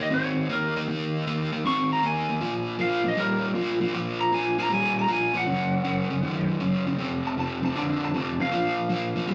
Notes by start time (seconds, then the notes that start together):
0.00 A#3 D#5
0.10 D#3 C4 C#5
0.49 D#3 A#3 A#4
0.76 D#3 A#3
0.88 D#3 A#3
1.27 D#3 A#3
1.52 D#3 A#3
1.65 D#3 C4 C#6
1.93 A#5
2.03 D#3 A#3 G#5
2.29 D#3 A#3
2.41 A#2 F3
2.79 A#2 F3 F5
3.04 A#2 F3
3.08 D#5
3.17 A#2 G3 A#4
3.54 A#2 F3
3.81 A#2 F3
3.94 A#2 F3
4.21 A#5
4.32 A#2 F3 G#5
4.58 A#2 F3 A#5
4.70 A#2 G3 G#5
4.99 A#5
5.08 A#2 F3
5.13 G#5
5.34 A#2 F3 F#5
5.46 F#2 C#3
5.84 F#2 C#3
6.10 F#2 C#3
6.23 F#2 D#3
6.60 F#2 C#3
6.87 F#2 C#3
6.98 F2 C3
7.27 A5
7.37 F2 C3 A5
7.62 F2 C3 A5
7.75 F2 D3 A5
8.05 A5
8.14 F2 C3 A5
8.40 F2 C3 F5
8.51 A#2 F3
8.89 A#2 F3
9.16 A#2 F3
9.27 A#2 G3